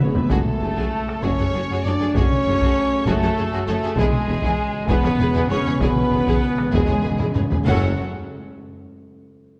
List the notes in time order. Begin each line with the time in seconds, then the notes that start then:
Already playing: E1 E2
0.00 B3 G#4 B4 C#5 B5
0.06 C#3
0.14 C#3 B4 E5, taiko low
0.22 C#3
0.30 F#1 F#2 F#3 A3 F#4 G#4 A4 A5, taiko
0.46 taiko mid
0.61 F#1 F#2 F#4 G#4 A4
0.76 F#2 F#4 G#4, taiko
1.08 taiko rim
1.22 F#1 F#2 C#4 F#4 G#4 C#5 C#6, taiko
1.39 F#2 F#4 G#4 A4 C#5
1.53 F#1 F#2 F#4 G#4 A4
1.69 F#2 F#4 G#4
1.85 F#1 F#2 D4 F#4 G#4 A4 C#5 D5 D6
2.00 F#2 F#4 G#4 A4
2.15 F#1 F#2 C#4 F#4 G#4 C#5 C#6, taiko
2.30 taiko mid
2.45 F#1 F#2 F#4 G#4 A4
2.61 F#2 F#4 G#4, taiko
3.06 F#1 F#2 A3 F#4 G#4 A4 A5, taiko
3.22 F#2 F#4 G#4 A4 C#5
3.36 F#1 F#2 F#4 G#4 A4
3.52 F#2 F#4 G#4
3.67 F#1 F#2 A3 F#4 G#4 A4 C#5 A5
3.81 F#2 F#4 G#4 A4
3.96 E1 E2 B2 G#3 C#4 E4 G#4 G#5, taiko
4.06 C#3
4.12 C#3, taiko mid
4.20 C#3
4.27 E1 E2 G#4 B4
4.35 C#3
4.42 E2 E4 G#4, taiko
4.49 C#3
4.57 C#3
4.65 C#3
4.73 C#3
4.80 C#3
4.87 E1 E2 C#3 B3 E4 G#4 B4 B5, taiko
4.95 C#3
5.01 E2 C#3 G#4 B4 C#5, taiko rim
5.09 C#3
5.16 E1 E2 C#3
5.20 C#3 G#4 B4
5.31 E2 C#3 E4 G#4
5.36 C#3 G#4
5.46 E1 E2 C#3 C#4 C#5
5.51 G#4 B4 C#5 C#6
5.61 C#3
5.66 E2 C#3 G#4 B4
5.76 C#3
5.80 E1 E2 C#3 B3 E4 G#4 B4 B5, taiko
5.91 C#3
5.96 C#3, taiko mid
6.07 C#3 B4
6.11 E1 E2 C#3 G#4
6.21 C#3
6.26 E2 C#3 E4 G#4, taiko
6.37 C#3
6.44 C#3
6.52 C#3
6.58 C#3, taiko rim
6.67 C#3
6.72 E1 E2 C#3 G#3 E4 G#4 G#5, taiko
6.83 C#3
6.87 E2 C#3 G#4 B4 C#5
6.98 C#3
7.02 E1 E2 C#3 G#4 B4
7.12 C#3
7.18 E2 C#3 E4 G#4, taiko low-mid
7.27 C#3
7.34 E1 E2 C#3 G#4 B4 C#5, taiko low-mid
7.43 C#3
7.50 E2 C#3 G#4 B4, taiko low
7.57 C#3
7.66 F#1 F#2 A2 F#3 C#4 F#4 A4 C#5 F#5, taiko low